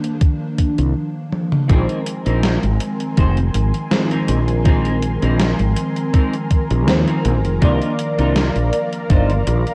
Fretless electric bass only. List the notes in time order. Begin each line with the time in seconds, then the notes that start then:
0.78 C2
1.70 A#1
2.26 A#1
2.63 G#1
3.18 F1
3.55 G#1
4.29 A#1
5.23 A#1
5.60 G#1
6.71 A#1
6.88 D#2
7.25 A#1
7.45 F1
7.62 C2
8.19 C2
8.56 A#1
9.10 G1
9.47 A#1